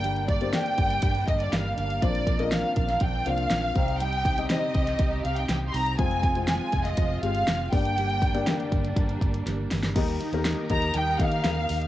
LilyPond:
<<
  \new Staff \with { instrumentName = "Violin section" } { \time 4/4 \key ees \major \tempo 4 = 121 g''8 d''8 g''4. ees''16 d''16 f''8 f''8 | d''8. ees''16 f''8 f''8 g''8 f''4. | g''4 ees''4. f''16 g''16 g''16. c'''32 bes''8 | aes''4 aes''8. ees''8. f''4 g''8~ |
g''4. r2 r8 | r4. bes''8 g''8 f''4. | }
  \new Staff \with { instrumentName = "Felt piano" } { \time 4/4 \key ees \major <bes d' g' d''>8 r16 <bes d' g' c''>16 <bes d' g' d''>4. r4. | <bes d' f' c''>8 r16 <bes d' f' bes'>4~ <bes d' f' bes'>16 r8 <bes d' f' c''>4 <g c' ees' c''>8~ | <g c' ees' c''>8 r16 <g c' ees' ees''>16 <g c' ees' c''>4. r4. | <aes c' f' c''>8 r16 <aes c' f' c''>4~ <aes c' f' c''>16 r8 <aes c' f' g'>4 <bes d' g' d''>8~ |
<bes d' g' d''>8 r16 <bes d' g' d''>16 <bes d' g' d''>4. r4. | <bes ees' g' ees''>8 r16 <bes ees' g' bes'>8 r16 <bes ees' g' ees''>8. r16 <bes ees' g' ees''>16 r16 <bes ees' g' f''>8. r16 | }
  \new Staff \with { instrumentName = "Felt piano" } { \clef bass \time 4/4 \key ees \major g,4 r2. | bes,4. r2 c8~ | c4 r2. | r2. r8 g,8~ |
g,4 r2. | ees4. r2 r8 | }
  \new Staff \with { instrumentName = "String section" } { \time 4/4 \key ees \major <g bes d'>1 | <c' d'>2.~ <c' d'>8 <c ees' g'>8~ | <c ees' g'>1 | <aes f'>2.~ <aes f'>8 <g bes d'>8~ |
<g bes d'>1 | <ees ees' g' bes'>1 | }
  \new Staff \with { instrumentName = "Steel-string acoustic guitar" } { \time 4/4 \key ees \major <g, d g bes d' g'>8 <g bes d' g'>8 <g bes d' g'>8 <g bes d' g'>8 <g, d g bes d' g'>8 <g bes d' g'>8 <g bes d' g'>8 <g bes d' g'>8 | <bes, d f c' d' bes'>8 <f c' d' bes'>8 <f c' d' bes'>8 <f c' d' bes'>8 <bes, d f c' d' bes'>8 <f c' d' bes'>8 <f c' d' bes'>8 <c' ees' g'>8 | <c g c' ees' g'>8 <c' ees' g'>8 <g c' ees' g'>8 <c' ees' g'>8 <c g c' ees' g'>8 <c' ees' g'>8 <g c' ees' g'>8 <c' ees' g'>8 | <f c' f' aes'>8 <c' f' aes'>8 <f c' f' aes'>8 <c' f' aes'>8 <f c' f' aes'>8 <c' f' aes'>8 <f c' f' aes'>8 <g bes d' g'>8 |
<g, d g bes d' g'>8 <g bes d' g'>8 <g bes d' g'>8 <g bes d' g'>8 <g, d g bes d' g'>8 <g bes d' g'>8 <g bes d' g'>8 <g bes d' g'>8 | <ees g bes ees' g'>8 <bes ees' g'>8 <g bes ees' g'>8 <bes ees' g'>8 <ees g bes ees' g'>8 <bes ees' g'>8 <g bes ees' g'>8 <bes ees' g'>8 | }
  \new Staff \with { instrumentName = "Fingered electric bass" } { \clef bass \time 4/4 \key ees \major g,,4~ g,,16 r16 g,,8 g,,8 g,,8 g,,8 g,,8 | bes,,4~ bes,,16 r16 bes,,8 bes,,8 c,8 bes,,8 c,8~ | c,4~ c,16 r16 c,8 c,8 c,8 c,8 c,8 | f,,4~ f,,16 r16 f,,8 f,,8 g,,8 f,,8 g,,8~ |
g,,4~ g,,16 r16 g,,8 g,,8 g,,8 g,,8 g,,8 | ees,8 r16 ees,8 r16 ees,8 ees,8 ees8 ees,8 ees,8 | }
  \new DrumStaff \with { instrumentName = "Drums" } \drummode { \time 4/4 hh16 hh16 <hh bd>16 hh16 <hh sn>16 hh16 <hh bd>16 hh16 <hh bd>16 hh16 <hh bd>16 hh16 <hh sn>8 hh16 hh16 | <hh bd>16 hh16 <hh bd>16 hh16 <hh sn>8 <hh bd>16 <hh sn>16 <hh bd>8 hh16 hh16 <hh sn>8 <hh bd>16 hh16 | hh16 hh16 <hh bd>16 hh16 <hh sn>8 <hh bd>16 <hh sn>16 <hh bd>8 hh16 hh16 <hh sn>8 hho16 hh16 | <hh bd>16 hh16 <hh bd>16 hh16 <hh sn>8 <hh bd>16 <hh sn>16 <hh bd>8 hh16 hh16 <hh sn>8 <hho bd>16 hh16 |
hh16 hh16 <hh bd>16 hh16 <hh sn>16 hh16 <hh bd>16 hh16 <hh bd>16 hh16 <hh bd>16 hh16 <hh sn>8 <hho sn>16 <hh sn>16 | <cymc hh bd>16 hh16 hh16 hh16 <hh sn>8 <hh bd>16 hh16 hh8 <hh bd>16 hh16 <hh sn>8 hho16 hh16 | }
>>